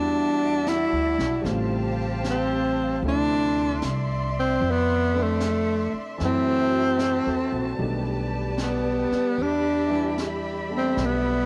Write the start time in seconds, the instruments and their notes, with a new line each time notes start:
Already playing: upright bass E2, upright piano G3 B3 D4 E4 F#4, tenor saxophone D4, string section F#4 D5 E5 A5
0.67 tenor saxophone E4, snare, hi-hat pedal
0.92 upright bass D2
1.18 upright bass B1, snare
1.41 upright bass A1, upright piano G3 A3, brush sweep, snare
1.46 upright piano C#3 C4, string section G4 C5 F5 A5
1.52 upright piano F4
2.24 snare, hi-hat pedal
2.30 tenor saxophone C4
3.03 upright bass D2, upright piano C3 F3 A3 D4 E4, string section D5 E5 C6, brush sweep
3.08 tenor saxophone D4
3.82 upright bass C2, snare, hi-hat pedal
4.40 tenor saxophone C4
4.61 upright bass F2, brush sweep
4.71 tenor saxophone B3
5.13 upright piano A3 C4 D4
5.22 tenor saxophone A3
5.40 snare, hi-hat pedal
5.93 muted upright bass stroke
6.18 upright bass F#2, upright piano E3 F#3 A3, string section F#4 C5 A5, brush sweep, snare
6.22 upright piano C4 E4, tenor saxophone C4
6.99 upright piano C5, snare, hi-hat pedal
7.26 upright bass E2, upright piano A4
7.52 upright bass A#1, upright piano F#4
7.78 upright bass B1, upright piano D#3 G3 A3 B3 D4, string section G4 B4 D5, brush sweep
8.58 snare, hi-hat pedal
8.63 tenor saxophone B3
9.12 muted upright bass stroke, snare
9.38 upright bass E2, string section D5 E5 B5, brush sweep
9.42 tenor saxophone D4
9.88 upright piano E3 G3 D4 B4
9.93 upright piano E4
10.18 snare, hi-hat pedal
10.69 upright piano G3 A3 B3 D4
10.77 tenor saxophone C4
10.97 upright bass B1, brush sweep, snare
11.05 tenor saxophone B3